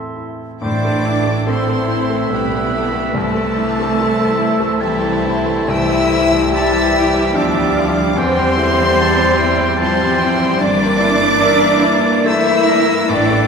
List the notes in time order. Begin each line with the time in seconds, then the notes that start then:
Already playing: A2 E3 C4 E4 A4 E5 C6
0.16 E4
0.61 A1 A2 E3 A3 D4 E4 A4 C5 D5 D6
0.85 A3
1.05 D4 E4 D5
1.26 A3
1.45 E3 C4 E4 A4 C5
1.49 E5 C6
1.68 A3
1.87 C4 E4
2.10 A3
2.29 B1 D3 G3 B3 D4 E4 G4 B4 B5
2.52 A3
2.75 E4
2.93 A3
3.13 C2 E3 A3 C4 E4 A4 A5
3.35 A3
3.56 D4 E4
3.80 A3
3.99 E4 A4 C5 E5
4.20 A3
4.39 E4
4.60 A3
4.79 E3 G3 C4 E4 E5 A5
5.02 A3
5.25 D3 E4
5.46 A3
5.68 C2 E3 A3 E4 E5 G5 E6
5.89 G3
6.11 E4
6.32 G3
6.52 E3 G3 E4 G4 E5 A5 E6
6.73 G3
6.94 E4 G4 G5
7.14 G3
7.33 D2 F3 G3 B3 D4 G4 D5 E5 D6
7.55 G3
7.75 F3 E4 F5
7.97 G3
8.15 E2 E3 C4 G4 C5 G5 C6
8.37 G3
8.55 D3 E4
8.79 G3
8.95 E3 G4 A5
9.20 G3
9.37 G3 E4 G5
9.58 G3
9.76 F3 G3 C4 E4 G4 C5 A5
9.81 C6
10.01 G3
10.19 G5
10.23 E4
10.42 G3
10.57 G1 G2 E3 G3 A#3 D4 E4 D5
10.62 D6
10.80 A#3
11.00 D4 E4
11.21 A#3 E4
11.41 D4 A#4 E5
11.62 A#3
11.81 G3 E4 D5
12.03 A#3
12.25 A3 D4 E4 C5 E5 E6
12.45 A#3 E4
12.66 D4 E4 A#4
12.86 A#3
13.08 A1 A2 A3 D4 A4 D5 D6
13.30 A3 C#4